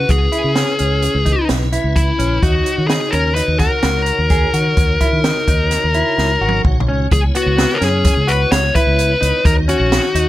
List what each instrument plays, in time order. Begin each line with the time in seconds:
Already playing: tonewheel organ C#3 C#4 E4 B4, clean electric guitar F#4, lead electric guitar B4
0.09 fingered electric bass C#2, lead electric guitar G#4, kick, closed hi-hat
0.32 clean electric guitar E4, closed hi-hat
0.44 fingered electric bass C#3
0.55 clean electric guitar C#4, snare, closed hi-hat
0.79 fingered electric bass C#2, clean electric guitar C#4, closed hi-hat
1.02 closed hi-hat
1.15 fingered electric bass C#2
1.25 clean electric guitar D#4, kick, closed hi-hat
1.49 fingered electric bass B1, snare, closed hi-hat
1.73 clean electric guitar E4, closed hi-hat
1.84 fingered electric bass C#2
1.96 lead electric guitar E4, kick, closed hi-hat
2.19 fingered electric bass A#1, clean electric guitar C#4, closed hi-hat
2.41 fingered electric bass D#2, tonewheel organ C#3 D#4 F#4, clean electric guitar D#4, lead electric guitar F#4, kick, closed hi-hat
2.45 tonewheel organ C#5
2.66 closed hi-hat
2.78 fingered electric bass D#3
2.88 clean electric guitar D#4, lead electric guitar G#4, snare, closed hi-hat
3.11 fingered electric bass D#2, clean electric guitar C#4, lead electric guitar A#4, closed hi-hat
3.35 clean electric guitar D#4, lead electric guitar B4, closed hi-hat
3.48 fingered electric bass D#2
3.59 clean electric guitar F#4, lead electric guitar A#4, kick, snare, closed hi-hat
3.83 fingered electric bass C#2, clean electric guitar F#4, snare, closed hi-hat
4.06 closed hi-hat
4.19 fingered electric bass D#2
4.30 clean electric guitar G#4, kick, closed hi-hat
4.53 fingered electric bass D#3, clean electric guitar F#4, closed hi-hat
4.77 fingered electric bass D#2, kick, closed hi-hat
5.01 clean electric guitar E4, kick, closed hi-hat
5.13 fingered electric bass D#3
5.24 clean electric guitar D#4, snare, closed hi-hat
5.48 fingered electric bass D#2, clean electric guitar D#4, kick, closed hi-hat
5.71 snare, closed hi-hat
5.84 fingered electric bass D#2
5.94 clean electric guitar E4, closed hi-hat
6.18 fingered electric bass C#2, snare
6.41 fingered electric bass G#1, clean electric guitar F#4
6.49 high tom
6.64 fingered electric bass A#1, kick, mid tom
6.80 mid tom
6.88 fingered electric bass C#2, clean electric guitar C#4
7.09 fingered electric bass C#2, tonewheel organ C#3 B3 E4, kick, closed hi-hat
7.13 lead electric guitar G#4, tonewheel organ C#5
7.35 clean electric guitar B3, lead electric guitar F#4, closed hi-hat
7.46 fingered electric bass C#2
7.57 clean electric guitar B3, snare, closed hi-hat
7.74 lead electric guitar A#4
7.81 fingered electric bass F#2, clean electric guitar C#4, lead electric guitar G#4, snare, closed hi-hat
8.05 kick, closed hi-hat
8.17 fingered electric bass C#2
8.27 clean electric guitar F#4, lead electric guitar B4, closed hi-hat
8.52 fingered electric bass C#2, lead electric guitar C#5, snare, closed hi-hat
8.75 clean electric guitar E4, lead electric guitar B4, kick, closed hi-hat
8.87 fingered electric bass C#2
8.99 closed hi-hat
9.21 fingered electric bass C#2, clean electric guitar D#4, closed hi-hat
9.43 fingered electric bass D#2, tonewheel organ D#3 D#4 F#4 C#5, lead electric guitar A#4, kick, closed hi-hat
9.68 clean electric guitar C#4, lead electric guitar F#4, closed hi-hat
9.80 fingered electric bass A#1
9.92 snare, closed hi-hat
10.15 fingered electric bass D#2, clean electric guitar D#4, closed hi-hat